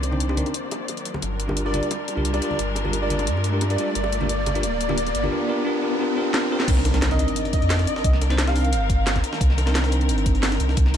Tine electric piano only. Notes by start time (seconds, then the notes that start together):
Already playing: D#4 A#4
0.11 C4 D4 D#4 C5
0.28 C4 D4 D#4 G4
0.37 C4 D4 D#4 A#4
1.48 D4 F4 G4 A#4
1.65 D4 F4 G4 A#4
1.72 D4 F4 G4 A#4
2.16 D4 F4 G4 A#4
2.33 D4 F4 G4 A#4
2.40 D4 F4 G4 A#4
2.84 D4 F4 G4 A#4
3.01 D4 F4 G4 A#4
3.09 D4 F4 G4 A#4
3.52 D4 F4 G4 A#4
3.69 D4 F4 G4 A#4
3.77 D4 F4 G4 A#4
4.20 D4 F4 G4 A#4
4.55 D4 F4 G4 A#4
4.89 D4 F4 G4 A#4
5.23 D4 F4 G4 A#4
5.31 D4 F4 G4 A#4
5.48 D4 F4 G4 A#4
5.65 D4 F4 G4 A#4
5.82 D4 F4 G4 A#4
5.99 D4 F4 G4 A#4
6.16 D4 F4 G4 A#4
6.33 D4 F4 G4 A#4
6.50 D4 F4 G4 A#4
6.67 C4 D4 D#4 A#4
6.93 C4 D4 D#4 A#4
7.10 C4 D4 D#4 A#4
7.17 C4 D4 D#4 A#4
8.29 C4 D4 D#4 C5
8.46 C4 D4 D#4 G4
8.54 C4 D4 D#4 A#4
9.66 C4 D4 D#4 A#4
9.83 C4 D4 D#4 A#4
9.90 C4 D4 D#4 A#4